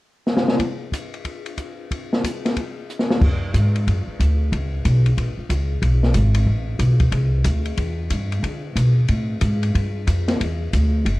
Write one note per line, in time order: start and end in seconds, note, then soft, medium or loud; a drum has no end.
0.27 snare medium
0.37 snare medium
0.48 snare medium
0.59 kick soft
0.59 ride soft
0.92 kick soft
0.92 hi-hat pedal medium
0.92 ride medium
1.14 ride soft
1.25 kick soft
1.25 ride soft
1.46 ride soft
1.58 kick soft
1.58 hi-hat pedal soft
1.58 ride soft
1.91 kick soft
1.91 ride soft
2.13 snare medium
2.24 kick soft
2.24 hi-hat pedal medium
2.24 ride medium
2.45 snare soft
2.45 ride soft
2.56 kick soft
2.56 ride medium
2.90 hi-hat pedal soft
2.99 snare soft
3.11 snare medium
3.21 3.53 F#2 medium
3.21 kick medium
3.21 crash medium
3.54 3.85 G#2 medium
3.54 kick soft
3.54 hi-hat pedal medium
3.54 ride medium
3.75 ride soft
3.87 4.06 F#2 medium
3.87 kick soft
3.87 ride medium
4.07 muted upright bass stroke soft
4.20 4.51 D2 medium
4.20 kick soft
4.20 hi-hat pedal soft
4.20 ride medium
4.52 4.84 C#2 medium
4.52 kick soft
4.52 ride medium
4.85 5.16 B1 medium
4.85 kick soft
4.85 hi-hat pedal soft
4.85 ride medium
5.06 ride soft
5.17 5.37 A#1 medium
5.17 kick soft
5.17 ride medium
5.38 muted upright bass stroke soft
5.49 5.81 C#2 medium
5.49 kick soft
5.49 hi-hat pedal soft
5.49 ride medium
5.82 6.14 B1 medium
5.82 kick soft
5.82 ride medium
6.03 snare soft
6.14 6.46 G#1 medium
6.14 kick soft
6.14 hi-hat pedal medium
6.14 ride medium
6.34 ride medium
6.47 6.79 A1 medium
6.47 kick soft
6.79 7.11 B1 medium
6.79 kick soft
6.79 hi-hat pedal soft
6.79 ride medium
7.00 kick soft
7.00 ride soft
7.12 7.44 C2 medium
7.12 kick soft
7.12 ride medium
7.44 7.77 D2 medium
7.44 kick soft
7.44 hi-hat pedal medium
7.44 ride medium
7.65 ride soft
7.77 8.10 E2 medium
7.77 kick soft
7.77 ride medium
8.10 8.42 G2 medium
8.10 kick soft
8.10 hi-hat pedal soft
8.10 ride medium
8.32 ride soft
8.43 8.75 D3 medium
8.43 kick soft
8.43 ride medium
8.76 9.08 B2 medium
8.76 kick soft
8.76 hi-hat pedal medium
8.76 ride medium
9.08 9.41 A2 medium
9.08 kick soft
9.08 ride medium
9.41 9.73 G#2 medium
9.41 kick soft
9.41 hi-hat pedal soft
9.41 ride medium
9.63 ride soft
9.75 10.06 G2 medium
9.75 kick soft
9.75 ride medium
10.07 10.39 F2 medium
10.07 kick soft
10.07 hi-hat pedal medium
10.07 ride medium
10.28 snare medium
10.28 ride soft
10.40 10.72 E2 medium
10.40 kick soft
10.40 ride medium
10.73 11.05 D2 medium
10.73 kick soft
10.73 hi-hat pedal soft
10.73 ride medium
11.05 11.20 F#1 medium
11.05 kick soft
11.05 ride medium